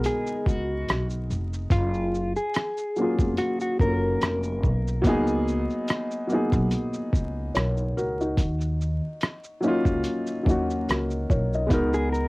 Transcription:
0.00 1.72 G#3 medium
0.00 1.72 B3 medium
0.00 1.73 D#4 medium
0.00 1.73 F#4 medium
0.00 1.73 G#4 medium
0.00 1.73 A#4 medium
0.00 closed hi-hat medium
0.00 shaker medium
0.06 0.47 G#4 medium
0.27 shaker medium
0.46 0.85 C#2 medium
0.46 1.07 F#4 medium
0.46 kick medium
0.46 shaker soft
0.89 1.27 B1 medium
0.89 cross-stick loud
0.89 closed hi-hat medium
0.89 shaker medium
1.10 shaker soft
1.30 1.69 F1 medium
1.30 shaker soft
1.54 shaker soft
1.70 2.32 F#1 loud
1.70 2.32 F4 loud
1.70 kick loud
1.70 closed hi-hat medium
1.70 shaker medium
1.94 shaker soft
2.15 shaker soft
2.36 3.34 G#4 medium
2.36 shaker soft
2.54 cross-stick loud
2.54 closed hi-hat medium
2.54 shaker medium
2.77 shaker soft
2.96 3.74 F#3 medium
2.96 3.74 A#3 medium
2.96 3.75 C#4 medium
2.96 shaker soft
3.01 3.76 F4 medium
3.01 3.77 G#4 medium
3.19 3.36 F1 medium
3.19 kick medium
3.19 shaker soft
3.37 3.59 F#4 medium
3.37 closed hi-hat medium
3.37 shaker medium
3.60 3.78 F#4 medium
3.60 shaker medium
3.79 4.18 F#1 medium
3.79 4.96 F#3 medium
3.79 4.96 A#3 medium
3.79 4.97 C#4 medium
3.79 5.01 A#4 medium
3.79 kick medium
3.79 shaker soft
3.85 4.98 F4 medium
3.85 3.90 A4 medium
3.92 5.02 A#4 medium
4.21 4.64 F1 medium
4.21 cross-stick loud
4.21 closed hi-hat medium
4.21 shaker medium
4.43 shaker soft
4.63 5.02 B1 medium
4.63 kick medium
4.63 shaker soft
4.87 shaker soft
5.02 5.65 C#2 medium
5.02 6.19 F#3 loud
5.02 6.20 A#3 loud
5.02 6.21 B3 loud
5.02 kick loud
5.02 closed hi-hat medium
5.02 shaker medium
5.07 6.22 D#4 loud
5.07 6.23 G#4 loud
5.27 shaker soft
5.48 shaker soft
5.70 shaker soft
5.88 cross-stick loud
5.88 closed hi-hat medium
5.88 shaker medium
6.11 shaker medium
6.27 7.83 F#3 medium
6.27 7.84 A#3 medium
6.27 7.85 B3 medium
6.27 shaker soft
6.32 7.56 D#4 medium
6.32 7.56 G#4 medium
6.52 6.70 B1 loud
6.52 kick medium
6.52 shaker soft
6.71 closed hi-hat medium
6.71 shaker medium
6.94 shaker medium
7.13 7.52 C#2 medium
7.13 kick medium
7.13 shaker medium
7.54 7.94 B1 medium
7.54 7.94 A#4 soft
7.54 7.94 C#5 medium
7.54 cross-stick loud
7.54 closed hi-hat medium
7.54 shaker medium
7.77 shaker soft
7.97 8.35 C#2 medium
7.97 8.19 F#4 medium
7.97 8.18 A#4 medium
7.97 shaker soft
8.20 8.59 D#4 medium
8.20 8.59 F#4 medium
8.20 shaker soft
8.38 8.98 D#2 loud
8.38 kick loud
8.38 closed hi-hat medium
8.38 shaker medium
8.61 shaker soft
8.81 shaker soft
9.21 cross-stick loud
9.21 closed hi-hat medium
9.21 shaker medium
9.44 shaker medium
9.60 10.39 F#3 medium
9.60 10.40 A#3 medium
9.60 10.41 C#4 medium
9.60 shaker soft
9.65 10.41 D#4 medium
9.65 10.42 F4 loud
9.85 10.03 C#2 medium
9.85 kick medium
9.85 shaker soft
10.04 closed hi-hat medium
10.04 shaker medium
10.27 shaker soft
10.43 10.85 D#2 medium
10.43 11.61 F#3 medium
10.43 11.62 A#3 medium
10.43 11.62 C#4 medium
10.43 kick medium
10.49 11.64 D#4 medium
10.49 10.88 F#4 medium
10.49 shaker soft
10.70 shaker soft
10.88 11.27 C#2 medium
10.88 11.28 F#4 soft
10.88 11.28 A#4 medium
10.88 cross-stick loud
10.88 closed hi-hat medium
10.88 shaker medium
11.10 shaker soft
11.30 11.69 B1 medium
11.30 11.52 A#4 medium
11.30 11.52 C#5 medium
11.30 kick loud
11.30 shaker soft
11.53 11.93 D#5 medium
11.53 shaker soft
11.67 12.28 G#3 medium
11.67 12.28 B3 medium
11.67 12.28 D#4 medium
11.67 kick loud
11.71 12.28 C#2 medium
11.71 12.28 F#4 medium
11.71 12.28 A#4 loud
11.71 closed hi-hat medium
11.71 shaker medium
11.94 12.11 G#4 medium
11.94 shaker soft
12.13 12.28 A#4 medium
12.13 shaker soft

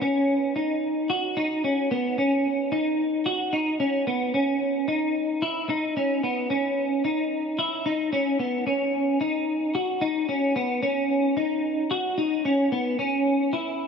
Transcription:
0.02 0.55 C#4 medium
0.56 1.10 D#4 medium
1.10 1.37 F#4 medium
1.37 1.64 D#4 medium
1.64 1.91 C#4 medium
1.91 2.18 B3 medium
2.18 2.72 C#4 medium
2.72 3.26 D#4 medium
3.26 3.53 F#4 medium
3.53 3.79 D#4 medium
3.80 4.07 C#4 medium
4.07 4.34 B3 medium
4.34 4.88 C#4 medium
4.88 5.42 D#4 medium
5.42 5.69 E4 medium
5.69 5.96 D#4 medium
5.97 6.23 C#4 medium
6.23 6.50 B3 medium
6.50 7.04 C#4 medium
7.05 7.59 D#4 medium
7.59 7.86 E4 medium
7.86 8.12 D#4 medium
8.13 8.39 C#4 medium
8.39 8.66 B3 medium
8.67 9.20 C#4 medium
9.21 9.75 D#4 medium
9.75 10.02 F#4 medium
10.01 10.28 D#4 medium
10.29 10.55 C#4 medium
10.56 10.82 B3 medium
10.83 11.36 C#4 medium
11.37 11.91 D#4 medium
11.91 12.18 F#4 medium
12.18 12.45 D#4 medium
12.45 12.72 C#4 medium
12.72 12.99 B3 medium
12.99 13.53 C#4 medium
13.53 13.87 E4 medium

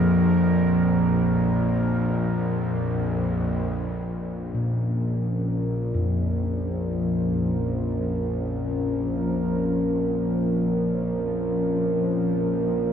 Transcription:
0.00 4.05 A#1 medium
0.00 4.16 F2 medium
0.00 1.22 G#4 medium
0.00 4.06 A#4 medium
4.07 12.93 A#1 medium
4.07 12.93 F3 medium
4.07 12.93 C#4 medium
4.07 12.93 A#4 medium
4.29 12.93 A#4 medium
4.54 6.14 A#2 soft
5.38 12.93 C5 medium
5.94 11.48 F2 soft

